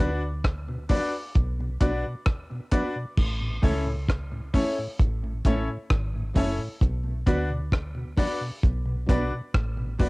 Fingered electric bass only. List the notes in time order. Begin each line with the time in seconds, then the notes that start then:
0.00 D2
1.36 B1
1.81 B1
3.18 A1
3.64 C#2
5.00 A1
5.45 A1
5.91 G#1
6.37 F#1
6.82 B1
7.27 D2
8.64 B1
9.10 B1
9.55 A1
10.00 E1